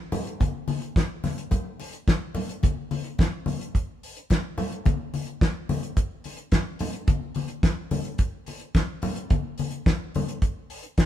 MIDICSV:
0, 0, Header, 1, 2, 480
1, 0, Start_track
1, 0, Tempo, 556586
1, 1307, Time_signature, 4, 2, 24, 8
1, 9536, End_track
2, 0, Start_track
2, 0, Title_t, "Drums"
2, 104, Note_on_c, 9, 62, 41
2, 104, Note_on_c, 9, 64, 91
2, 107, Note_on_c, 9, 46, 67
2, 191, Note_off_c, 9, 62, 0
2, 191, Note_off_c, 9, 64, 0
2, 193, Note_off_c, 9, 46, 0
2, 233, Note_on_c, 9, 42, 50
2, 319, Note_off_c, 9, 42, 0
2, 348, Note_on_c, 9, 63, 78
2, 351, Note_on_c, 9, 36, 110
2, 357, Note_on_c, 9, 42, 72
2, 434, Note_off_c, 9, 63, 0
2, 437, Note_off_c, 9, 36, 0
2, 443, Note_off_c, 9, 42, 0
2, 584, Note_on_c, 9, 62, 33
2, 584, Note_on_c, 9, 63, 78
2, 586, Note_on_c, 9, 46, 74
2, 670, Note_off_c, 9, 62, 0
2, 670, Note_off_c, 9, 63, 0
2, 673, Note_off_c, 9, 46, 0
2, 705, Note_on_c, 9, 42, 41
2, 791, Note_off_c, 9, 42, 0
2, 828, Note_on_c, 9, 36, 119
2, 831, Note_on_c, 9, 62, 35
2, 837, Note_on_c, 9, 38, 105
2, 837, Note_on_c, 9, 42, 68
2, 914, Note_off_c, 9, 36, 0
2, 917, Note_off_c, 9, 62, 0
2, 923, Note_off_c, 9, 42, 0
2, 924, Note_off_c, 9, 38, 0
2, 1067, Note_on_c, 9, 63, 76
2, 1067, Note_on_c, 9, 64, 77
2, 1070, Note_on_c, 9, 46, 56
2, 1075, Note_on_c, 9, 38, 31
2, 1154, Note_off_c, 9, 63, 0
2, 1154, Note_off_c, 9, 64, 0
2, 1156, Note_off_c, 9, 46, 0
2, 1161, Note_off_c, 9, 38, 0
2, 1189, Note_on_c, 9, 42, 50
2, 1275, Note_off_c, 9, 42, 0
2, 1302, Note_on_c, 9, 62, 32
2, 1302, Note_on_c, 9, 64, 71
2, 1307, Note_on_c, 9, 36, 92
2, 1309, Note_on_c, 9, 42, 61
2, 1388, Note_off_c, 9, 62, 0
2, 1388, Note_off_c, 9, 64, 0
2, 1394, Note_off_c, 9, 36, 0
2, 1395, Note_off_c, 9, 42, 0
2, 1548, Note_on_c, 9, 62, 36
2, 1552, Note_on_c, 9, 46, 76
2, 1634, Note_off_c, 9, 62, 0
2, 1638, Note_off_c, 9, 46, 0
2, 1665, Note_on_c, 9, 42, 48
2, 1751, Note_off_c, 9, 42, 0
2, 1790, Note_on_c, 9, 36, 111
2, 1790, Note_on_c, 9, 42, 72
2, 1791, Note_on_c, 9, 62, 36
2, 1797, Note_on_c, 9, 38, 108
2, 1876, Note_off_c, 9, 36, 0
2, 1876, Note_off_c, 9, 42, 0
2, 1877, Note_off_c, 9, 62, 0
2, 1884, Note_off_c, 9, 38, 0
2, 2023, Note_on_c, 9, 62, 39
2, 2023, Note_on_c, 9, 64, 82
2, 2026, Note_on_c, 9, 46, 72
2, 2109, Note_off_c, 9, 62, 0
2, 2109, Note_off_c, 9, 64, 0
2, 2113, Note_off_c, 9, 46, 0
2, 2149, Note_on_c, 9, 42, 51
2, 2236, Note_off_c, 9, 42, 0
2, 2267, Note_on_c, 9, 62, 36
2, 2267, Note_on_c, 9, 63, 76
2, 2273, Note_on_c, 9, 36, 123
2, 2278, Note_on_c, 9, 42, 77
2, 2353, Note_off_c, 9, 62, 0
2, 2353, Note_off_c, 9, 63, 0
2, 2359, Note_off_c, 9, 36, 0
2, 2364, Note_off_c, 9, 42, 0
2, 2509, Note_on_c, 9, 46, 74
2, 2510, Note_on_c, 9, 62, 33
2, 2510, Note_on_c, 9, 63, 74
2, 2596, Note_off_c, 9, 46, 0
2, 2596, Note_off_c, 9, 62, 0
2, 2596, Note_off_c, 9, 63, 0
2, 2623, Note_on_c, 9, 42, 40
2, 2710, Note_off_c, 9, 42, 0
2, 2747, Note_on_c, 9, 62, 34
2, 2751, Note_on_c, 9, 36, 121
2, 2761, Note_on_c, 9, 42, 71
2, 2762, Note_on_c, 9, 38, 113
2, 2833, Note_off_c, 9, 62, 0
2, 2837, Note_off_c, 9, 36, 0
2, 2847, Note_off_c, 9, 42, 0
2, 2848, Note_off_c, 9, 38, 0
2, 2983, Note_on_c, 9, 62, 32
2, 2983, Note_on_c, 9, 63, 65
2, 2983, Note_on_c, 9, 64, 69
2, 2998, Note_on_c, 9, 46, 58
2, 3070, Note_off_c, 9, 62, 0
2, 3070, Note_off_c, 9, 63, 0
2, 3070, Note_off_c, 9, 64, 0
2, 3085, Note_off_c, 9, 46, 0
2, 3115, Note_on_c, 9, 42, 49
2, 3201, Note_off_c, 9, 42, 0
2, 3232, Note_on_c, 9, 36, 90
2, 3237, Note_on_c, 9, 42, 60
2, 3319, Note_off_c, 9, 36, 0
2, 3323, Note_off_c, 9, 42, 0
2, 3478, Note_on_c, 9, 46, 66
2, 3565, Note_off_c, 9, 46, 0
2, 3593, Note_on_c, 9, 42, 47
2, 3679, Note_off_c, 9, 42, 0
2, 3709, Note_on_c, 9, 62, 34
2, 3713, Note_on_c, 9, 36, 99
2, 3714, Note_on_c, 9, 42, 70
2, 3721, Note_on_c, 9, 38, 127
2, 3795, Note_off_c, 9, 62, 0
2, 3799, Note_off_c, 9, 36, 0
2, 3801, Note_off_c, 9, 42, 0
2, 3808, Note_off_c, 9, 38, 0
2, 3947, Note_on_c, 9, 64, 94
2, 3952, Note_on_c, 9, 46, 71
2, 4033, Note_off_c, 9, 64, 0
2, 4039, Note_off_c, 9, 46, 0
2, 4074, Note_on_c, 9, 42, 47
2, 4160, Note_off_c, 9, 42, 0
2, 4187, Note_on_c, 9, 62, 36
2, 4187, Note_on_c, 9, 63, 82
2, 4193, Note_on_c, 9, 36, 123
2, 4195, Note_on_c, 9, 42, 75
2, 4274, Note_off_c, 9, 62, 0
2, 4274, Note_off_c, 9, 63, 0
2, 4279, Note_off_c, 9, 36, 0
2, 4282, Note_off_c, 9, 42, 0
2, 4430, Note_on_c, 9, 46, 69
2, 4430, Note_on_c, 9, 63, 66
2, 4516, Note_off_c, 9, 63, 0
2, 4517, Note_off_c, 9, 46, 0
2, 4542, Note_on_c, 9, 42, 38
2, 4629, Note_off_c, 9, 42, 0
2, 4668, Note_on_c, 9, 36, 127
2, 4674, Note_on_c, 9, 38, 120
2, 4674, Note_on_c, 9, 42, 64
2, 4755, Note_off_c, 9, 36, 0
2, 4760, Note_off_c, 9, 42, 0
2, 4761, Note_off_c, 9, 38, 0
2, 4910, Note_on_c, 9, 62, 30
2, 4910, Note_on_c, 9, 63, 79
2, 4910, Note_on_c, 9, 64, 74
2, 4911, Note_on_c, 9, 46, 61
2, 4996, Note_off_c, 9, 62, 0
2, 4996, Note_off_c, 9, 63, 0
2, 4996, Note_off_c, 9, 64, 0
2, 4997, Note_off_c, 9, 46, 0
2, 5027, Note_on_c, 9, 42, 50
2, 5114, Note_off_c, 9, 42, 0
2, 5146, Note_on_c, 9, 42, 65
2, 5147, Note_on_c, 9, 36, 102
2, 5233, Note_off_c, 9, 36, 0
2, 5233, Note_off_c, 9, 42, 0
2, 5383, Note_on_c, 9, 46, 72
2, 5394, Note_on_c, 9, 62, 38
2, 5469, Note_off_c, 9, 46, 0
2, 5480, Note_off_c, 9, 62, 0
2, 5493, Note_on_c, 9, 42, 47
2, 5579, Note_off_c, 9, 42, 0
2, 5619, Note_on_c, 9, 42, 76
2, 5624, Note_on_c, 9, 36, 100
2, 5627, Note_on_c, 9, 38, 112
2, 5633, Note_on_c, 9, 62, 35
2, 5706, Note_off_c, 9, 42, 0
2, 5710, Note_off_c, 9, 36, 0
2, 5713, Note_off_c, 9, 38, 0
2, 5720, Note_off_c, 9, 62, 0
2, 5858, Note_on_c, 9, 46, 79
2, 5869, Note_on_c, 9, 64, 84
2, 5944, Note_off_c, 9, 46, 0
2, 5955, Note_off_c, 9, 64, 0
2, 5978, Note_on_c, 9, 42, 53
2, 6064, Note_off_c, 9, 42, 0
2, 6102, Note_on_c, 9, 42, 76
2, 6104, Note_on_c, 9, 36, 120
2, 6106, Note_on_c, 9, 63, 82
2, 6188, Note_off_c, 9, 42, 0
2, 6190, Note_off_c, 9, 36, 0
2, 6193, Note_off_c, 9, 63, 0
2, 6335, Note_on_c, 9, 46, 74
2, 6345, Note_on_c, 9, 62, 35
2, 6345, Note_on_c, 9, 63, 69
2, 6421, Note_off_c, 9, 46, 0
2, 6432, Note_off_c, 9, 62, 0
2, 6432, Note_off_c, 9, 63, 0
2, 6451, Note_on_c, 9, 42, 44
2, 6537, Note_off_c, 9, 42, 0
2, 6581, Note_on_c, 9, 36, 127
2, 6585, Note_on_c, 9, 38, 125
2, 6585, Note_on_c, 9, 42, 64
2, 6588, Note_on_c, 9, 62, 34
2, 6667, Note_off_c, 9, 36, 0
2, 6671, Note_off_c, 9, 42, 0
2, 6672, Note_off_c, 9, 38, 0
2, 6674, Note_off_c, 9, 62, 0
2, 6821, Note_on_c, 9, 46, 60
2, 6823, Note_on_c, 9, 62, 32
2, 6823, Note_on_c, 9, 63, 70
2, 6823, Note_on_c, 9, 64, 77
2, 6907, Note_off_c, 9, 46, 0
2, 6909, Note_off_c, 9, 62, 0
2, 6909, Note_off_c, 9, 63, 0
2, 6909, Note_off_c, 9, 64, 0
2, 6941, Note_on_c, 9, 42, 50
2, 7027, Note_off_c, 9, 42, 0
2, 7058, Note_on_c, 9, 42, 65
2, 7062, Note_on_c, 9, 36, 98
2, 7064, Note_on_c, 9, 62, 34
2, 7144, Note_off_c, 9, 42, 0
2, 7148, Note_off_c, 9, 36, 0
2, 7150, Note_off_c, 9, 62, 0
2, 7300, Note_on_c, 9, 46, 72
2, 7312, Note_on_c, 9, 62, 38
2, 7386, Note_off_c, 9, 46, 0
2, 7398, Note_off_c, 9, 62, 0
2, 7414, Note_on_c, 9, 42, 47
2, 7500, Note_off_c, 9, 42, 0
2, 7543, Note_on_c, 9, 42, 66
2, 7544, Note_on_c, 9, 36, 120
2, 7550, Note_on_c, 9, 38, 127
2, 7556, Note_on_c, 9, 62, 41
2, 7629, Note_off_c, 9, 42, 0
2, 7630, Note_off_c, 9, 36, 0
2, 7636, Note_off_c, 9, 38, 0
2, 7642, Note_off_c, 9, 62, 0
2, 7777, Note_on_c, 9, 46, 73
2, 7786, Note_on_c, 9, 62, 43
2, 7786, Note_on_c, 9, 64, 90
2, 7864, Note_off_c, 9, 46, 0
2, 7872, Note_off_c, 9, 62, 0
2, 7872, Note_off_c, 9, 64, 0
2, 7901, Note_on_c, 9, 42, 57
2, 7987, Note_off_c, 9, 42, 0
2, 8023, Note_on_c, 9, 42, 73
2, 8025, Note_on_c, 9, 36, 127
2, 8034, Note_on_c, 9, 63, 79
2, 8109, Note_off_c, 9, 42, 0
2, 8112, Note_off_c, 9, 36, 0
2, 8120, Note_off_c, 9, 63, 0
2, 8259, Note_on_c, 9, 46, 66
2, 8274, Note_on_c, 9, 63, 78
2, 8345, Note_off_c, 9, 46, 0
2, 8360, Note_off_c, 9, 63, 0
2, 8371, Note_on_c, 9, 42, 42
2, 8457, Note_off_c, 9, 42, 0
2, 8505, Note_on_c, 9, 36, 127
2, 8509, Note_on_c, 9, 38, 110
2, 8509, Note_on_c, 9, 42, 65
2, 8591, Note_off_c, 9, 36, 0
2, 8595, Note_off_c, 9, 42, 0
2, 8596, Note_off_c, 9, 38, 0
2, 8749, Note_on_c, 9, 46, 57
2, 8759, Note_on_c, 9, 62, 33
2, 8759, Note_on_c, 9, 63, 79
2, 8759, Note_on_c, 9, 64, 74
2, 8835, Note_off_c, 9, 46, 0
2, 8845, Note_off_c, 9, 62, 0
2, 8845, Note_off_c, 9, 63, 0
2, 8845, Note_off_c, 9, 64, 0
2, 8869, Note_on_c, 9, 42, 55
2, 8955, Note_off_c, 9, 42, 0
2, 8985, Note_on_c, 9, 42, 64
2, 8986, Note_on_c, 9, 36, 101
2, 9071, Note_off_c, 9, 42, 0
2, 9072, Note_off_c, 9, 36, 0
2, 9227, Note_on_c, 9, 46, 83
2, 9314, Note_off_c, 9, 46, 0
2, 9340, Note_on_c, 9, 42, 48
2, 9426, Note_off_c, 9, 42, 0
2, 9465, Note_on_c, 9, 42, 67
2, 9468, Note_on_c, 9, 36, 106
2, 9472, Note_on_c, 9, 38, 120
2, 9478, Note_on_c, 9, 62, 36
2, 9536, Note_off_c, 9, 36, 0
2, 9536, Note_off_c, 9, 38, 0
2, 9536, Note_off_c, 9, 42, 0
2, 9536, Note_off_c, 9, 62, 0
2, 9536, End_track
0, 0, End_of_file